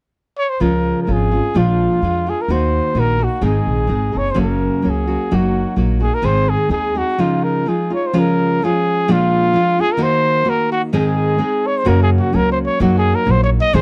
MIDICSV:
0, 0, Header, 1, 4, 480
1, 0, Start_track
1, 0, Key_signature, -5, "major"
1, 0, Tempo, 469484
1, 621, Time_signature, 2, 2, 24, 8
1, 7335, Tempo, 479233
1, 9255, Tempo, 465116
1, 14132, End_track
2, 0, Start_track
2, 0, Title_t, "Trumpet"
2, 0, Program_c, 0, 56
2, 392, Note_on_c, 0, 73, 91
2, 505, Note_on_c, 0, 72, 79
2, 521, Note_off_c, 0, 73, 0
2, 625, Note_on_c, 0, 70, 76
2, 641, Note_off_c, 0, 72, 0
2, 1040, Note_off_c, 0, 70, 0
2, 1046, Note_on_c, 0, 70, 55
2, 1146, Note_on_c, 0, 68, 74
2, 1162, Note_off_c, 0, 70, 0
2, 1612, Note_on_c, 0, 65, 71
2, 1627, Note_off_c, 0, 68, 0
2, 2343, Note_on_c, 0, 68, 71
2, 2359, Note_off_c, 0, 65, 0
2, 2469, Note_on_c, 0, 70, 65
2, 2484, Note_off_c, 0, 68, 0
2, 2574, Note_on_c, 0, 72, 76
2, 2590, Note_off_c, 0, 70, 0
2, 3060, Note_on_c, 0, 70, 78
2, 3075, Note_off_c, 0, 72, 0
2, 3308, Note_on_c, 0, 66, 69
2, 3323, Note_off_c, 0, 70, 0
2, 3517, Note_off_c, 0, 66, 0
2, 3526, Note_on_c, 0, 68, 65
2, 4274, Note_on_c, 0, 73, 76
2, 4289, Note_off_c, 0, 68, 0
2, 4407, Note_on_c, 0, 72, 66
2, 4422, Note_off_c, 0, 73, 0
2, 4496, Note_off_c, 0, 72, 0
2, 4509, Note_on_c, 0, 70, 59
2, 5004, Note_on_c, 0, 68, 63
2, 5019, Note_off_c, 0, 70, 0
2, 5468, Note_on_c, 0, 66, 61
2, 5483, Note_off_c, 0, 68, 0
2, 5892, Note_off_c, 0, 66, 0
2, 6152, Note_on_c, 0, 68, 78
2, 6279, Note_on_c, 0, 70, 78
2, 6294, Note_off_c, 0, 68, 0
2, 6389, Note_on_c, 0, 72, 83
2, 6405, Note_off_c, 0, 70, 0
2, 6641, Note_on_c, 0, 68, 82
2, 6656, Note_off_c, 0, 72, 0
2, 6863, Note_off_c, 0, 68, 0
2, 6870, Note_on_c, 0, 68, 76
2, 7135, Note_on_c, 0, 66, 83
2, 7150, Note_off_c, 0, 68, 0
2, 7365, Note_on_c, 0, 65, 73
2, 7380, Note_off_c, 0, 66, 0
2, 7597, Note_on_c, 0, 70, 69
2, 7612, Note_off_c, 0, 65, 0
2, 7844, Note_on_c, 0, 68, 60
2, 7859, Note_off_c, 0, 70, 0
2, 8083, Note_off_c, 0, 68, 0
2, 8104, Note_on_c, 0, 73, 66
2, 8226, Note_on_c, 0, 72, 66
2, 8241, Note_off_c, 0, 73, 0
2, 8349, Note_on_c, 0, 70, 80
2, 8364, Note_off_c, 0, 72, 0
2, 8801, Note_on_c, 0, 68, 77
2, 8816, Note_off_c, 0, 70, 0
2, 9282, Note_on_c, 0, 65, 88
2, 9298, Note_off_c, 0, 68, 0
2, 9993, Note_on_c, 0, 68, 101
2, 10008, Note_off_c, 0, 65, 0
2, 10114, Note_on_c, 0, 70, 74
2, 10129, Note_off_c, 0, 68, 0
2, 10219, Note_on_c, 0, 72, 106
2, 10235, Note_off_c, 0, 70, 0
2, 10703, Note_on_c, 0, 70, 89
2, 10718, Note_off_c, 0, 72, 0
2, 10932, Note_off_c, 0, 70, 0
2, 10939, Note_on_c, 0, 66, 91
2, 11039, Note_off_c, 0, 66, 0
2, 11174, Note_on_c, 0, 68, 75
2, 11914, Note_on_c, 0, 73, 85
2, 11930, Note_off_c, 0, 68, 0
2, 12029, Note_on_c, 0, 72, 78
2, 12045, Note_off_c, 0, 73, 0
2, 12137, Note_on_c, 0, 70, 82
2, 12153, Note_off_c, 0, 72, 0
2, 12281, Note_off_c, 0, 70, 0
2, 12287, Note_on_c, 0, 68, 89
2, 12361, Note_off_c, 0, 68, 0
2, 12451, Note_on_c, 0, 66, 81
2, 12620, Note_on_c, 0, 70, 90
2, 12635, Note_off_c, 0, 66, 0
2, 12779, Note_off_c, 0, 70, 0
2, 12792, Note_on_c, 0, 72, 80
2, 12861, Note_off_c, 0, 72, 0
2, 12937, Note_on_c, 0, 73, 90
2, 13087, Note_off_c, 0, 73, 0
2, 13100, Note_on_c, 0, 66, 74
2, 13248, Note_off_c, 0, 66, 0
2, 13268, Note_on_c, 0, 68, 99
2, 13444, Note_on_c, 0, 70, 91
2, 13459, Note_off_c, 0, 68, 0
2, 13608, Note_on_c, 0, 72, 89
2, 13623, Note_off_c, 0, 70, 0
2, 13734, Note_off_c, 0, 72, 0
2, 13741, Note_on_c, 0, 73, 82
2, 13811, Note_off_c, 0, 73, 0
2, 13919, Note_on_c, 0, 75, 102
2, 14056, Note_on_c, 0, 72, 96
2, 14071, Note_off_c, 0, 75, 0
2, 14132, Note_off_c, 0, 72, 0
2, 14132, End_track
3, 0, Start_track
3, 0, Title_t, "Nylon-string guitar"
3, 0, Program_c, 1, 24
3, 615, Note_on_c, 1, 49, 69
3, 616, Note_on_c, 1, 56, 66
3, 623, Note_on_c, 1, 53, 65
3, 623, Note_on_c, 1, 65, 73
3, 624, Note_on_c, 1, 61, 69
3, 1080, Note_off_c, 1, 56, 0
3, 1086, Note_off_c, 1, 53, 0
3, 1092, Note_on_c, 1, 56, 48
3, 1095, Note_off_c, 1, 61, 0
3, 1098, Note_off_c, 1, 65, 0
3, 1098, Note_on_c, 1, 53, 46
3, 1103, Note_off_c, 1, 49, 0
3, 1107, Note_on_c, 1, 61, 47
3, 1111, Note_on_c, 1, 65, 52
3, 1330, Note_off_c, 1, 65, 0
3, 1335, Note_off_c, 1, 61, 0
3, 1343, Note_on_c, 1, 65, 37
3, 1347, Note_on_c, 1, 61, 35
3, 1348, Note_off_c, 1, 56, 0
3, 1350, Note_off_c, 1, 53, 0
3, 1360, Note_on_c, 1, 56, 30
3, 1576, Note_on_c, 1, 46, 61
3, 1577, Note_off_c, 1, 56, 0
3, 1579, Note_off_c, 1, 65, 0
3, 1581, Note_off_c, 1, 61, 0
3, 1583, Note_on_c, 1, 53, 69
3, 1589, Note_on_c, 1, 56, 70
3, 1591, Note_on_c, 1, 62, 68
3, 1592, Note_on_c, 1, 65, 78
3, 2054, Note_off_c, 1, 53, 0
3, 2059, Note_off_c, 1, 46, 0
3, 2062, Note_off_c, 1, 56, 0
3, 2066, Note_on_c, 1, 53, 44
3, 2067, Note_off_c, 1, 62, 0
3, 2067, Note_off_c, 1, 65, 0
3, 2074, Note_on_c, 1, 56, 47
3, 2083, Note_on_c, 1, 62, 45
3, 2089, Note_on_c, 1, 65, 57
3, 2302, Note_off_c, 1, 65, 0
3, 2308, Note_off_c, 1, 62, 0
3, 2314, Note_off_c, 1, 53, 0
3, 2314, Note_on_c, 1, 65, 39
3, 2318, Note_off_c, 1, 56, 0
3, 2320, Note_on_c, 1, 62, 29
3, 2337, Note_on_c, 1, 56, 30
3, 2543, Note_off_c, 1, 65, 0
3, 2546, Note_off_c, 1, 62, 0
3, 2549, Note_on_c, 1, 51, 59
3, 2555, Note_off_c, 1, 56, 0
3, 2556, Note_on_c, 1, 63, 66
3, 2559, Note_on_c, 1, 58, 63
3, 2560, Note_on_c, 1, 66, 76
3, 3004, Note_off_c, 1, 51, 0
3, 3014, Note_off_c, 1, 63, 0
3, 3016, Note_on_c, 1, 51, 50
3, 3018, Note_off_c, 1, 58, 0
3, 3022, Note_off_c, 1, 66, 0
3, 3026, Note_on_c, 1, 63, 47
3, 3030, Note_on_c, 1, 58, 49
3, 3034, Note_on_c, 1, 66, 46
3, 3250, Note_off_c, 1, 66, 0
3, 3259, Note_off_c, 1, 63, 0
3, 3262, Note_on_c, 1, 66, 36
3, 3266, Note_off_c, 1, 51, 0
3, 3271, Note_on_c, 1, 63, 30
3, 3272, Note_off_c, 1, 58, 0
3, 3286, Note_on_c, 1, 58, 31
3, 3486, Note_off_c, 1, 58, 0
3, 3490, Note_on_c, 1, 60, 70
3, 3491, Note_off_c, 1, 66, 0
3, 3491, Note_on_c, 1, 51, 61
3, 3493, Note_off_c, 1, 63, 0
3, 3495, Note_on_c, 1, 68, 71
3, 3496, Note_on_c, 1, 44, 71
3, 3497, Note_on_c, 1, 56, 64
3, 3506, Note_on_c, 1, 63, 68
3, 3946, Note_off_c, 1, 56, 0
3, 3950, Note_off_c, 1, 60, 0
3, 3958, Note_on_c, 1, 56, 49
3, 3962, Note_on_c, 1, 60, 47
3, 3965, Note_off_c, 1, 63, 0
3, 3972, Note_off_c, 1, 68, 0
3, 3977, Note_on_c, 1, 63, 50
3, 3978, Note_off_c, 1, 51, 0
3, 3981, Note_off_c, 1, 44, 0
3, 3984, Note_on_c, 1, 68, 50
3, 4201, Note_off_c, 1, 63, 0
3, 4205, Note_off_c, 1, 68, 0
3, 4214, Note_off_c, 1, 60, 0
3, 4214, Note_on_c, 1, 63, 32
3, 4217, Note_on_c, 1, 68, 33
3, 4221, Note_off_c, 1, 56, 0
3, 4227, Note_on_c, 1, 60, 29
3, 4233, Note_on_c, 1, 56, 25
3, 4436, Note_off_c, 1, 56, 0
3, 4440, Note_on_c, 1, 54, 65
3, 4441, Note_off_c, 1, 63, 0
3, 4443, Note_on_c, 1, 42, 63
3, 4444, Note_on_c, 1, 49, 63
3, 4445, Note_on_c, 1, 61, 71
3, 4449, Note_off_c, 1, 60, 0
3, 4452, Note_off_c, 1, 68, 0
3, 4453, Note_on_c, 1, 58, 64
3, 4456, Note_on_c, 1, 66, 79
3, 4917, Note_off_c, 1, 54, 0
3, 4924, Note_off_c, 1, 58, 0
3, 4930, Note_on_c, 1, 54, 46
3, 4936, Note_on_c, 1, 58, 42
3, 4938, Note_off_c, 1, 42, 0
3, 4939, Note_off_c, 1, 49, 0
3, 4939, Note_off_c, 1, 61, 0
3, 4945, Note_off_c, 1, 66, 0
3, 4950, Note_on_c, 1, 61, 53
3, 4956, Note_on_c, 1, 66, 46
3, 5175, Note_off_c, 1, 66, 0
3, 5178, Note_off_c, 1, 61, 0
3, 5180, Note_off_c, 1, 58, 0
3, 5187, Note_on_c, 1, 66, 40
3, 5189, Note_off_c, 1, 54, 0
3, 5190, Note_on_c, 1, 61, 28
3, 5192, Note_on_c, 1, 58, 29
3, 5202, Note_on_c, 1, 54, 33
3, 5417, Note_off_c, 1, 54, 0
3, 5423, Note_off_c, 1, 58, 0
3, 5424, Note_off_c, 1, 66, 0
3, 5425, Note_off_c, 1, 61, 0
3, 5430, Note_on_c, 1, 54, 65
3, 5435, Note_on_c, 1, 66, 73
3, 5436, Note_on_c, 1, 58, 69
3, 5436, Note_on_c, 1, 63, 66
3, 5878, Note_off_c, 1, 54, 0
3, 5884, Note_off_c, 1, 58, 0
3, 5890, Note_on_c, 1, 54, 40
3, 5896, Note_off_c, 1, 66, 0
3, 5896, Note_on_c, 1, 58, 47
3, 5902, Note_off_c, 1, 63, 0
3, 5907, Note_on_c, 1, 63, 44
3, 5908, Note_on_c, 1, 66, 51
3, 6121, Note_off_c, 1, 66, 0
3, 6133, Note_on_c, 1, 66, 36
3, 6137, Note_off_c, 1, 63, 0
3, 6143, Note_off_c, 1, 54, 0
3, 6143, Note_off_c, 1, 58, 0
3, 6150, Note_on_c, 1, 63, 34
3, 6155, Note_on_c, 1, 58, 32
3, 6357, Note_off_c, 1, 63, 0
3, 6358, Note_on_c, 1, 44, 69
3, 6363, Note_off_c, 1, 58, 0
3, 6365, Note_on_c, 1, 51, 70
3, 6365, Note_on_c, 1, 56, 66
3, 6367, Note_on_c, 1, 60, 76
3, 6369, Note_on_c, 1, 63, 77
3, 6370, Note_off_c, 1, 66, 0
3, 6377, Note_on_c, 1, 68, 77
3, 6841, Note_off_c, 1, 56, 0
3, 6842, Note_off_c, 1, 60, 0
3, 6845, Note_off_c, 1, 44, 0
3, 6846, Note_on_c, 1, 56, 43
3, 6847, Note_off_c, 1, 63, 0
3, 6849, Note_off_c, 1, 51, 0
3, 6851, Note_off_c, 1, 68, 0
3, 6854, Note_on_c, 1, 60, 45
3, 6855, Note_on_c, 1, 68, 55
3, 6859, Note_on_c, 1, 63, 54
3, 7093, Note_off_c, 1, 68, 0
3, 7096, Note_off_c, 1, 63, 0
3, 7099, Note_off_c, 1, 56, 0
3, 7103, Note_off_c, 1, 60, 0
3, 7106, Note_on_c, 1, 68, 39
3, 7108, Note_on_c, 1, 63, 37
3, 7116, Note_on_c, 1, 60, 29
3, 7119, Note_on_c, 1, 56, 35
3, 7336, Note_off_c, 1, 56, 0
3, 7336, Note_off_c, 1, 68, 0
3, 7337, Note_off_c, 1, 63, 0
3, 7341, Note_off_c, 1, 60, 0
3, 7345, Note_on_c, 1, 53, 64
3, 7346, Note_on_c, 1, 49, 67
3, 7348, Note_on_c, 1, 56, 68
3, 7352, Note_on_c, 1, 65, 74
3, 7358, Note_on_c, 1, 63, 75
3, 7814, Note_off_c, 1, 53, 0
3, 7818, Note_on_c, 1, 53, 42
3, 7821, Note_off_c, 1, 49, 0
3, 7821, Note_off_c, 1, 63, 0
3, 7824, Note_off_c, 1, 56, 0
3, 7828, Note_on_c, 1, 56, 44
3, 7833, Note_on_c, 1, 63, 44
3, 7840, Note_off_c, 1, 65, 0
3, 7844, Note_on_c, 1, 65, 48
3, 8053, Note_off_c, 1, 65, 0
3, 8057, Note_off_c, 1, 63, 0
3, 8065, Note_on_c, 1, 65, 34
3, 8069, Note_off_c, 1, 56, 0
3, 8069, Note_on_c, 1, 63, 34
3, 8070, Note_off_c, 1, 53, 0
3, 8081, Note_on_c, 1, 56, 28
3, 8289, Note_off_c, 1, 56, 0
3, 8291, Note_off_c, 1, 65, 0
3, 8296, Note_off_c, 1, 63, 0
3, 8296, Note_on_c, 1, 53, 79
3, 8297, Note_on_c, 1, 49, 73
3, 8300, Note_on_c, 1, 61, 74
3, 8301, Note_on_c, 1, 56, 78
3, 8303, Note_on_c, 1, 65, 88
3, 8774, Note_off_c, 1, 53, 0
3, 8779, Note_off_c, 1, 49, 0
3, 8781, Note_off_c, 1, 56, 0
3, 8781, Note_off_c, 1, 61, 0
3, 8782, Note_off_c, 1, 65, 0
3, 8786, Note_on_c, 1, 53, 57
3, 8797, Note_on_c, 1, 61, 59
3, 8803, Note_on_c, 1, 56, 55
3, 8809, Note_on_c, 1, 65, 61
3, 9236, Note_off_c, 1, 53, 0
3, 9239, Note_off_c, 1, 56, 0
3, 9241, Note_off_c, 1, 65, 0
3, 9245, Note_on_c, 1, 46, 77
3, 9248, Note_on_c, 1, 53, 79
3, 9251, Note_off_c, 1, 61, 0
3, 9251, Note_on_c, 1, 56, 94
3, 9253, Note_on_c, 1, 65, 73
3, 9255, Note_on_c, 1, 62, 94
3, 9698, Note_off_c, 1, 53, 0
3, 9705, Note_off_c, 1, 56, 0
3, 9710, Note_on_c, 1, 53, 63
3, 9717, Note_on_c, 1, 56, 62
3, 9723, Note_off_c, 1, 65, 0
3, 9726, Note_off_c, 1, 62, 0
3, 9727, Note_off_c, 1, 46, 0
3, 9735, Note_on_c, 1, 65, 68
3, 9739, Note_on_c, 1, 62, 60
3, 9961, Note_off_c, 1, 65, 0
3, 9965, Note_off_c, 1, 62, 0
3, 9966, Note_off_c, 1, 53, 0
3, 9970, Note_off_c, 1, 56, 0
3, 9974, Note_on_c, 1, 65, 46
3, 9977, Note_on_c, 1, 62, 41
3, 9997, Note_on_c, 1, 56, 35
3, 10164, Note_on_c, 1, 51, 80
3, 10171, Note_off_c, 1, 62, 0
3, 10174, Note_off_c, 1, 56, 0
3, 10175, Note_on_c, 1, 63, 88
3, 10176, Note_off_c, 1, 65, 0
3, 10178, Note_on_c, 1, 58, 93
3, 10180, Note_on_c, 1, 66, 95
3, 10644, Note_off_c, 1, 51, 0
3, 10644, Note_off_c, 1, 58, 0
3, 10653, Note_off_c, 1, 63, 0
3, 10653, Note_off_c, 1, 66, 0
3, 10656, Note_on_c, 1, 58, 60
3, 10657, Note_on_c, 1, 51, 49
3, 10665, Note_on_c, 1, 63, 53
3, 10666, Note_on_c, 1, 66, 56
3, 11139, Note_off_c, 1, 63, 0
3, 11141, Note_off_c, 1, 51, 0
3, 11144, Note_off_c, 1, 58, 0
3, 11149, Note_off_c, 1, 66, 0
3, 11149, Note_on_c, 1, 44, 75
3, 11151, Note_on_c, 1, 63, 86
3, 11153, Note_on_c, 1, 51, 78
3, 11160, Note_on_c, 1, 56, 85
3, 11160, Note_on_c, 1, 60, 79
3, 11163, Note_on_c, 1, 68, 86
3, 11607, Note_off_c, 1, 56, 0
3, 11610, Note_off_c, 1, 60, 0
3, 11620, Note_off_c, 1, 63, 0
3, 11620, Note_on_c, 1, 56, 52
3, 11622, Note_off_c, 1, 68, 0
3, 11623, Note_on_c, 1, 60, 60
3, 11632, Note_on_c, 1, 63, 59
3, 11635, Note_on_c, 1, 68, 60
3, 11639, Note_off_c, 1, 44, 0
3, 11641, Note_off_c, 1, 51, 0
3, 12097, Note_off_c, 1, 56, 0
3, 12098, Note_on_c, 1, 42, 74
3, 12101, Note_on_c, 1, 54, 70
3, 12105, Note_off_c, 1, 60, 0
3, 12107, Note_off_c, 1, 68, 0
3, 12109, Note_on_c, 1, 58, 86
3, 12111, Note_on_c, 1, 49, 74
3, 12111, Note_on_c, 1, 66, 91
3, 12114, Note_off_c, 1, 63, 0
3, 12118, Note_on_c, 1, 61, 84
3, 12579, Note_off_c, 1, 54, 0
3, 12582, Note_off_c, 1, 58, 0
3, 12588, Note_off_c, 1, 61, 0
3, 12591, Note_on_c, 1, 54, 52
3, 12595, Note_on_c, 1, 58, 55
3, 12598, Note_off_c, 1, 66, 0
3, 12600, Note_off_c, 1, 42, 0
3, 12600, Note_on_c, 1, 61, 58
3, 12607, Note_off_c, 1, 49, 0
3, 12611, Note_on_c, 1, 66, 50
3, 13067, Note_off_c, 1, 58, 0
3, 13069, Note_off_c, 1, 54, 0
3, 13080, Note_on_c, 1, 58, 83
3, 13081, Note_on_c, 1, 54, 81
3, 13084, Note_off_c, 1, 66, 0
3, 13088, Note_off_c, 1, 61, 0
3, 13092, Note_on_c, 1, 63, 82
3, 13096, Note_on_c, 1, 66, 90
3, 13536, Note_off_c, 1, 54, 0
3, 13547, Note_off_c, 1, 58, 0
3, 13548, Note_on_c, 1, 54, 54
3, 13559, Note_off_c, 1, 63, 0
3, 13559, Note_on_c, 1, 58, 53
3, 13563, Note_on_c, 1, 63, 53
3, 13565, Note_off_c, 1, 66, 0
3, 13578, Note_on_c, 1, 66, 59
3, 14039, Note_off_c, 1, 54, 0
3, 14042, Note_off_c, 1, 58, 0
3, 14044, Note_on_c, 1, 44, 92
3, 14047, Note_off_c, 1, 63, 0
3, 14047, Note_on_c, 1, 60, 84
3, 14052, Note_on_c, 1, 51, 90
3, 14053, Note_on_c, 1, 56, 78
3, 14054, Note_off_c, 1, 66, 0
3, 14059, Note_on_c, 1, 63, 89
3, 14064, Note_on_c, 1, 68, 101
3, 14132, Note_off_c, 1, 44, 0
3, 14132, Note_off_c, 1, 51, 0
3, 14132, Note_off_c, 1, 56, 0
3, 14132, Note_off_c, 1, 60, 0
3, 14132, Note_off_c, 1, 63, 0
3, 14132, Note_off_c, 1, 68, 0
3, 14132, End_track
4, 0, Start_track
4, 0, Title_t, "Upright bass"
4, 0, Program_c, 2, 32
4, 618, Note_on_c, 2, 37, 75
4, 934, Note_off_c, 2, 37, 0
4, 1108, Note_on_c, 2, 32, 79
4, 1418, Note_off_c, 2, 32, 0
4, 1587, Note_on_c, 2, 34, 83
4, 1898, Note_off_c, 2, 34, 0
4, 2066, Note_on_c, 2, 41, 68
4, 2376, Note_off_c, 2, 41, 0
4, 2539, Note_on_c, 2, 39, 82
4, 2850, Note_off_c, 2, 39, 0
4, 3013, Note_on_c, 2, 34, 81
4, 3326, Note_off_c, 2, 34, 0
4, 3493, Note_on_c, 2, 32, 86
4, 3657, Note_off_c, 2, 32, 0
4, 3745, Note_on_c, 2, 34, 56
4, 3957, Note_off_c, 2, 34, 0
4, 3981, Note_on_c, 2, 32, 77
4, 4209, Note_off_c, 2, 32, 0
4, 4244, Note_on_c, 2, 30, 60
4, 4450, Note_off_c, 2, 30, 0
4, 4467, Note_on_c, 2, 30, 69
4, 4781, Note_off_c, 2, 30, 0
4, 4960, Note_on_c, 2, 37, 72
4, 5268, Note_off_c, 2, 37, 0
4, 5444, Note_on_c, 2, 30, 83
4, 5748, Note_off_c, 2, 30, 0
4, 5897, Note_on_c, 2, 34, 77
4, 6208, Note_off_c, 2, 34, 0
4, 6368, Note_on_c, 2, 32, 85
4, 6682, Note_off_c, 2, 32, 0
4, 6841, Note_on_c, 2, 39, 81
4, 7158, Note_off_c, 2, 39, 0
4, 12120, Note_on_c, 2, 42, 96
4, 12439, Note_off_c, 2, 42, 0
4, 12608, Note_on_c, 2, 37, 84
4, 12924, Note_off_c, 2, 37, 0
4, 13087, Note_on_c, 2, 42, 104
4, 13402, Note_off_c, 2, 42, 0
4, 13565, Note_on_c, 2, 34, 94
4, 13878, Note_off_c, 2, 34, 0
4, 14053, Note_on_c, 2, 44, 110
4, 14132, Note_off_c, 2, 44, 0
4, 14132, End_track
0, 0, End_of_file